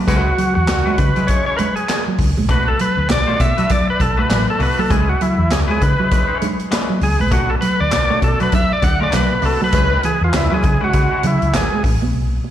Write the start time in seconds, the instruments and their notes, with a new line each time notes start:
0.07 fingered electric bass C#2, clean electric guitar G#3 C#4 E4 B4, horn section E4 G#4 B4, tonewheel organ F#4, kick, closed hi-hat, muted conga
0.38 clean electric guitar F#3, closed hi-hat, muted conga
0.55 fingered electric bass E2, tonewheel organ F#4, muted clean electric guitar stroke
0.68 fingered electric bass C#2, snare, clap, closed hi-hat, high conga
0.86 clean electric guitar G#3 C#4 E4 B4
0.98 fingered electric bass C#3, tonewheel organ B4, kick, closed hi-hat, low conga
1.15 clean electric guitar F#3 G#3 C#4 E4 B4, closed hi-hat
1.27 clean electric guitar G#3 C#4 E4 B4, tonewheel organ C#5, kick, closed hi-hat
1.46 clean electric guitar G#3 C#4 E4 C#5, tonewheel organ C#5
1.56 clean electric guitar G#3, tonewheel organ A#4 B4, closed hi-hat, muted conga, low conga
1.76 tonewheel organ G#4, closed hi-hat
1.89 snare, clap, closed hi-hat, high conga
2.07 clean electric guitar F#3, high conga
2.18 fingered electric bass C#2, muted clean electric guitar stroke, kick, open hi-hat
2.37 fingered electric bass A#1, clean electric guitar G#3, high conga
2.49 fingered electric bass B1, clean electric guitar A3 D4 F#4 B4, tonewheel organ B4, kick, closed hi-hat, muted conga
2.68 tonewheel organ A4
2.79 clean electric guitar F#3, tonewheel organ B4, closed hi-hat, muted conga
2.97 fingered electric bass D2, muted clean electric guitar stroke
3.09 fingered electric bass B1, tonewheel organ D5, snare, clap, closed hi-hat, high conga
3.27 clean electric guitar A3 D4 F#4 C#5
3.40 fingered electric bass B2, tonewheel organ E5, muted clean electric guitar stroke, kick, closed hi-hat
3.57 clean electric guitar F#3 A3 D4 F#4 B4, closed hi-hat
3.69 clean electric guitar F#3, tonewheel organ D5, kick, closed hi-hat, low conga
3.88 tonewheel organ B4, muted clean electric guitar stroke
4.00 fingered electric bass B1, tonewheel organ A4, kick, closed hi-hat, muted conga, low conga
4.17 clean electric guitar A3 D4 F#4 B4, tonewheel organ B4
4.29 fingered electric bass A1, clean electric guitar F#3, snare, clap, closed hi-hat, high conga
4.48 tonewheel organ A4, high conga
4.59 fingered electric bass C2, clean electric guitar A3 D4 F#4 B4, tonewheel organ B4, muted clean electric guitar stroke, open hi-hat
4.79 clean electric guitar F#3, tonewheel organ A4, high conga
4.89 fingered electric bass C#2, clean electric guitar G#3 C#4 E4 B4, tonewheel organ G#4, kick, closed hi-hat, muted conga
5.09 tonewheel organ F#4
5.21 clean electric guitar F#3, tonewheel organ E4, closed hi-hat, muted conga
5.38 fingered electric bass E2, muted clean electric guitar stroke
5.50 fingered electric bass C#2, tonewheel organ G#4, snare, clap, closed hi-hat, high conga
5.68 clean electric guitar G#3 C#4 E4 B4, tonewheel organ G#4
5.81 fingered electric bass C#3, tonewheel organ B4, kick, closed hi-hat, low conga
5.98 clean electric guitar F#3 G#3 C#4 E4 B4
6.10 clean electric guitar G#3 C#4 E4 B4, kick, closed hi-hat, muted conga
6.27 clean electric guitar G#3 C#4 E4 C#5
6.41 clean electric guitar G#3, closed hi-hat, muted conga, low conga
6.59 closed hi-hat
6.71 clean electric guitar G#3 C#4 E4 B4, snare, clap, closed hi-hat, high conga
6.89 clean electric guitar F#3, high conga
7.01 fingered electric bass C#2, tonewheel organ G#4, muted clean electric guitar stroke, open hi-hat
7.20 fingered electric bass A#1, clean electric guitar G#3, tonewheel organ B4, high conga
7.31 fingered electric bass B1, clean electric guitar A3 D4 F#4 B4, tonewheel organ F#4, kick, closed hi-hat, muted conga
7.50 tonewheel organ A4
7.61 clean electric guitar F#3, tonewheel organ B4, closed hi-hat, muted conga
7.80 fingered electric bass D2, tonewheel organ D5, muted clean electric guitar stroke
7.92 fingered electric bass B1, snare, clap, closed hi-hat, high conga
8.10 clean electric guitar A3 D4 F#4 C#5
8.22 fingered electric bass B2, tonewheel organ A4, muted clean electric guitar stroke, kick, closed hi-hat
8.40 clean electric guitar F#3 A3 D4 F#4 B4, tonewheel organ B4, closed hi-hat
8.52 clean electric guitar F#3, tonewheel organ E5, kick, closed hi-hat, muted conga, low conga
8.71 tonewheel organ D5, muted clean electric guitar stroke
8.82 fingered electric bass D2, tonewheel organ F#5, kick, closed hi-hat, muted conga, low conga
9.00 clean electric guitar A3 D4 F#4 B4, tonewheel organ D5
9.12 fingered electric bass B1, clean electric guitar F#3, tonewheel organ B4, snare, clap, closed hi-hat, high conga
9.31 high conga
9.42 fingered electric bass C2, clean electric guitar A3 D4 F#4 B4, tonewheel organ A4, muted clean electric guitar stroke, open hi-hat
9.61 clean electric guitar F#3, tonewheel organ B4, high conga
9.72 fingered electric bass C#2, clean electric guitar G#3 C#4 E4 B4, horn section E4 G#4 B4, kick, closed hi-hat, muted conga
10.03 clean electric guitar E3, tonewheel organ G#4, closed hi-hat, muted conga
10.21 fingered electric bass E2, tonewheel organ F4, muted clean electric guitar stroke
10.33 fingered electric bass C#2, tonewheel organ E4, snare, clap, closed hi-hat, high conga
10.50 clean electric guitar F#3 G#3 C#4 E4 B4, tonewheel organ G#4
10.63 fingered electric bass C#3, muted clean electric guitar stroke, kick, closed hi-hat, low conga
10.81 clean electric guitar G#3 C#4 E4 B4, tonewheel organ F#4
10.93 fingered electric bass C#3, clean electric guitar G#3 C#4 E4 B4, kick, closed hi-hat, muted conga
11.11 clean electric guitar G#3 C#4 E4 C#5
11.23 fingered electric bass C#3, clean electric guitar F#3, tonewheel organ E4, closed hi-hat, muted conga, low conga
11.42 fingered electric bass C#2, closed hi-hat
11.53 fingered electric bass G#1, tonewheel organ G#4, snare, clap, closed hi-hat, high conga
11.71 clean electric guitar G#3, high conga
11.84 fingered electric bass A1, muted clean electric guitar stroke, kick, open hi-hat
12.02 fingered electric bass A#1, clean electric guitar B3, high conga
12.13 fingered electric bass B1, muted conga
12.44 muted conga